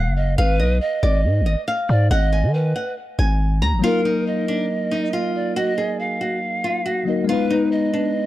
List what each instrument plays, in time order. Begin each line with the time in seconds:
Already playing: pan flute F5, nylon-string guitar F#5
0.06 808-style bass F#1
0.16 pan flute D#5
0.37 808-style bass G#1, pan flute B4, nylon-string guitar F5
0.60 808-style bass B1, nylon-string guitar D#5
0.81 pan flute D#5
1.03 808-style bass G#1, nylon-string guitar D5
1.25 808-style bass G#2
1.41 808-style bass G#1
1.46 nylon-string guitar D#5
1.68 nylon-string guitar F5
1.89 808-style bass G#2, pan flute D5
2.11 808-style bass G#1, pan flute D#5, nylon-string guitar F#5
2.32 nylon-string guitar G#5
2.43 808-style bass D#3
2.54 pan flute B4
2.76 nylon-string guitar F#5
3.19 808-style bass G#1, nylon-string guitar G#5
3.62 808-style bass D#2, nylon-string guitar A#5
3.73 808-style bass G#1
3.79 tine electric piano F#3 A#3
3.83 tine electric piano D#4, nylon-string guitar F4, pan flute A#4
3.88 tine electric piano A#4
4.05 nylon-string guitar D#4
4.27 pan flute D#5
4.48 nylon-string guitar D4
4.91 nylon-string guitar D#4
5.13 nylon-string guitar F4
5.35 pan flute D5
5.56 nylon-string guitar F#4, pan flute D#5
5.78 nylon-string guitar G#4
6.00 pan flute F5
6.21 nylon-string guitar F#4
6.64 nylon-string guitar F4
6.86 nylon-string guitar F#4
7.05 tine electric piano F#3 A#3 D#4, pan flute D#5
7.09 tine electric piano A#4
7.24 tine electric piano G#3 B3, pan flute B4
7.29 tine electric piano D#4, nylon-string guitar F4
7.33 tine electric piano B4
7.50 nylon-string guitar D#4
7.72 pan flute D#5
7.93 nylon-string guitar D4